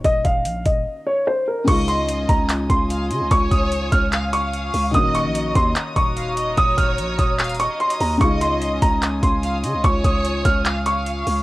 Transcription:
<<
  \new Staff \with { instrumentName = "Grand piano" } { \time 4/4 \key des \major \tempo 4 = 147 ees''8 f''4 ees''4 des''8 c''8 bes'8 | des'''8 c'''4 bes''8 r8 c'''4. | des'''8 ees'''4 f'''8 r8 des'''4. | ees'''8 des'''4 c'''8 r8 des'''4. |
ees'''8 f'''4 ees'''4 des'''8 c'''8 bes''8 | des'''8 c'''4 bes''8 r8 c'''4. | des'''8 ees'''4 f'''8 r8 des'''4. | }
  \new Staff \with { instrumentName = "String section" } { \time 4/4 \key des \major << { r1 | <des'' ees'''>1~ | <des'' ees'''>1~ | <des'' ees'''>1~ |
<des'' ees'''>1~ | <des'' ees'''>1~ | <des'' ees'''>1 | } \\ { r1 | <f' aes''>1~ | <f' aes''>1 | <ges' bes''>1~ |
<ges' bes''>1 | <f' aes''>1~ | <f' aes''>1 | } >> }
  \new Staff \with { instrumentName = "Violin section" } { \time 4/4 \key des \major r1 | ees''2 r4 f''8 ees''8 | des''2 f''8 f''4. | ees''2 r4 f''8 ees''8 |
des''2 f''8 ees''4. | ees''2 r4 f''8 ees''8 | des''2 f''8 f''4. | }
  \new Staff \with { instrumentName = "Felt piano" } { \time 4/4 \key des \major <ees bes des' ges'>1 | <des aes ees' f'>1~ | <des aes ees' f'>1 | <ees bes des' ges'>1~ |
<ees bes des' ges'>1 | <des aes ees' f'>1~ | <des aes ees' f'>1 | }
  \new Staff \with { instrumentName = "808-style bass" } { \clef bass \time 4/4 \key des \major ees,,8 ees,,8 bes,,8 ees,,8 r2 | des,4. des,4 des,4 des16 des,16 | des,8 des,4 des,2 des,8 | ees,,8. bes,,8. ees,8 r8 ees,,4. |
ees,,8 ees,,8 bes,,8 ees,,4~ ees,,16 r8. ees,8 | des,4. des,4 des,4 des16 des,16 | des,8 des,4 des,2 des,8 | }
  \new DrumStaff \with { instrumentName = "Drums" } \drummode { \time 4/4 <hh bd>8 <hh bd>8 hh8 <hh bd>8 r4 r4 | <cymc hh bd>8 hh8 hh8 <hh bd>8 <hc hh>8 <hh bd>8 hh8 hh8 | <hh bd>8 <hh bd>8 hh8 <hh bd>8 <hc hh>8 hh8 hh8 hho8 | <hh bd>8 hh8 hh8 <hh bd>8 <hc hh>8 <hh bd>8 hh8 hh8 |
<hh bd>8 <hh bd>8 hh8 <hh bd>8 <hc hh>32 hh32 hh32 hh32 hh8 hh16 hh16 hho8 | <hh bd>8 hh8 hh8 <hh bd>8 <hc hh>8 <hh bd>8 hh8 hh8 | <hh bd>8 <hh bd>8 hh8 <hh bd>8 <hc hh>8 hh8 hh8 hho8 | }
>>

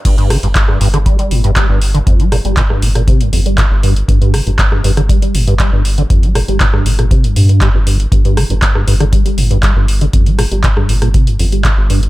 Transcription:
<<
  \new Staff \with { instrumentName = "Acid bass" } { \clef bass \time 4/4 \key g \minor \tempo 4 = 119 g,16 g,16 d16 g,16 r16 g,16 g,16 d16 g16 g16 a,16 g,16 g16 g,16 r16 d16 | f,16 g16 bes,16 g16 bes,16 g,16 bes,16 bes,16 c16 g,16 f,16 g16 bes,16 r16 g,16 r16 | g,16 g,16 d16 g,16 r16 g,16 g,16 d16 g16 g16 a,16 g,16 g16 g,16 r16 d16 | f,16 g16 bes,16 g16 bes,16 g,16 bes,16 bes,16 c16 g,16 bes,16 g,16 g16 g,16 g,16 r16 |
g,16 g,16 d16 g,16 r16 g,16 g,16 d16 g16 g16 a,16 g,16 g16 g,16 r16 d16 | f,16 g16 bes,16 g16 bes,16 g,16 bes,16 bes,16 c16 g,16 f,16 g16 bes,16 r16 g,16 r16 | }
  \new Staff \with { instrumentName = "Analog synth bass" } { \clef bass \time 4/4 \key g \minor g,,8. g,,8. g,,8. r16 g,,8. g,,8. | g,,8. g,,8. g,,8. r16 g,,8. g,,8. | g,,8. g,,8. g,,8. r16 g,,8. g,,8. | g,,8. g,,8. g,,8. r16 g,8. g,,8. |
g,,8. g,,8. g,,8. r16 g,,8. g,,8. | g,,8. g,,8. g,,8. r16 g,,8. g,,8. | }
  \new DrumStaff \with { instrumentName = "Drums" } \drummode { \time 4/4 <cymc hh bd>16 hh16 <hho ss>16 hh16 <hc hh bd>16 ss16 hho16 <hh ss>16 <hh bd>16 hh16 hho16 hh16 <hc hh bd>8 hho16 hh16 | <hh bd>16 hh16 <hho ss>16 hh16 <hc hh bd>16 ss16 hho16 <hh ss>16 <hh bd>16 hh16 hho16 hh16 <hc hh bd>8 hho16 hh16 | <hh bd>16 hh16 <hho ss>16 hh16 <hc hh bd>16 ss16 hho16 <hh ss>16 <hh bd>16 hh16 hho16 hh16 <hc hh bd>8 hho16 hh16 | <hh bd>16 hh16 <hho ss>16 hh16 <hc hh bd>16 ss16 hho16 <hh ss>16 <hh bd>16 hh16 hho16 hh16 <hc hh bd>8 hho16 hh16 |
<hh bd>16 hh16 <hho ss>16 hh16 <hc hh bd>16 ss16 hho16 <hh ss>16 <hh bd>16 hh16 hho16 hh16 <hc hh bd>8 hho16 hh16 | <hh bd>16 hh16 <hho ss>16 hh16 <hc hh bd>16 ss16 hho16 <hh ss>16 <hh bd>16 hh16 hho16 hh16 <hc hh bd>8 hho16 hh16 | }
>>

